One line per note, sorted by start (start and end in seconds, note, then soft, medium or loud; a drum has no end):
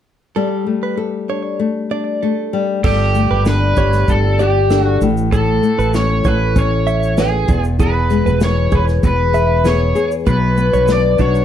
0.36 2.53 G3 medium
0.36 0.66 A4 medium
0.36 0.97 A4 medium
0.67 1.59 A3 soft
0.83 0.98 B4 medium
0.97 2.87 A4 medium
1.29 1.90 D4 soft
1.29 1.59 C#5 medium
1.59 2.22 A3 medium
1.91 3.46 D4 soft
1.91 2.21 D5 medium
2.22 2.87 A3 medium
2.22 2.66 A4 medium
2.53 2.83 G3 medium
2.84 3.27 G1 loud
2.84 5.07 G3 medium
2.84 3.43 G4 medium
2.84 3.14 A4 medium
2.84 kick loud
2.84 crash loud
3.15 5.63 A3 medium
3.15 shaker soft
3.31 3.74 G1 medium
3.31 3.46 B4 medium
3.45 4.07 D4 medium
3.45 4.11 B4 loud
3.45 snare loud
3.45 shaker medium
3.76 4.06 G1 medium
3.76 4.39 G4 medium
3.76 4.07 C#5 medium
3.76 kick medium
3.76 shaker medium
3.93 snare soft
3.93 shaker soft
4.08 4.97 G1 loud
4.08 4.70 D4 medium
4.08 4.41 A4 loud
4.08 kick medium
4.08 shaker medium
4.39 5.08 G4 medium
4.39 4.82 G4 medium
4.39 4.69 D5 medium
4.39 shaker soft
4.70 5.08 D4 medium
4.70 5.14 A4 medium
4.70 snare loud
4.70 shaker medium
4.82 4.98 F#4 medium
5.01 5.59 A1 medium
5.01 5.31 A2 medium
5.01 shaker medium
5.17 shaker soft
5.32 7.49 A2 medium
5.32 5.62 A4 medium
5.32 5.90 A4 medium
5.32 kick loud
5.32 shaker medium
5.63 7.55 A3 medium
5.63 shaker soft
5.79 6.21 A1 medium
5.79 5.93 B4 medium
5.79 shaker soft
5.94 6.54 C#4 medium
5.94 6.27 C#5 medium
5.94 snare loud
5.94 shaker medium
6.24 7.45 A1 medium
6.24 6.87 A4 medium
6.24 6.58 B4 medium
6.24 6.54 C#5 medium
6.24 kick medium
6.24 shaker medium
6.56 7.16 C#4 medium
6.56 7.21 C#5 medium
6.56 kick medium
6.56 shaker medium
6.87 7.16 E5 medium
6.87 shaker soft
7.03 shaker soft
7.17 7.55 C#4 medium
7.17 7.62 G#4 medium
7.17 7.62 B4 medium
7.17 snare loud
7.17 shaker medium
7.48 8.22 E1 medium
7.48 7.78 E2 medium
7.48 kick loud
7.48 shaker medium
7.64 shaker soft
7.79 10.27 E2 medium
7.79 8.09 G#4 medium
7.79 8.44 B4 medium
7.79 kick loud
7.79 shaker medium
8.10 10.33 G#3 medium
8.10 shaker soft
8.26 8.69 E1 medium
8.26 8.41 B4 medium
8.26 shaker soft
8.41 9.02 B3 medium
8.41 8.75 C#5 medium
8.41 snare loud
8.41 shaker medium
8.71 9.01 E1 loud
8.71 9.32 G#4 medium
8.71 8.83 B4 medium
8.71 9.02 C#5 medium
8.71 kick medium
8.71 shaker soft
8.88 snare soft
8.88 shaker soft
9.03 9.92 E1 loud
9.03 9.64 B3 medium
9.03 9.68 B4 medium
9.03 kick medium
9.03 shaker medium
9.33 9.94 G#4 medium
9.33 9.64 E5 medium
9.33 shaker soft
9.64 10.57 B3 medium
9.64 10.09 G#4 medium
9.64 10.09 C#5 medium
9.64 snare loud
9.64 shaker medium
9.95 10.33 G#4 medium
9.95 shaker medium
10.11 shaker soft
10.26 10.70 B1 loud
10.26 11.45 B2 medium
10.26 10.56 B4 medium
10.26 10.92 B4 loud
10.26 kick loud
10.26 shaker medium
10.57 11.45 B3 medium
10.57 shaker soft
10.73 11.16 B1 medium
10.73 10.88 C#5 medium
10.73 shaker soft
10.88 11.45 D4 medium
10.88 11.21 D5 medium
10.88 snare loud
10.88 shaker medium
11.18 11.45 B1 medium
11.18 11.45 D4 medium
11.18 11.45 F#4 medium
11.18 11.45 C#5 medium
11.18 kick medium
11.18 shaker soft
11.35 shaker soft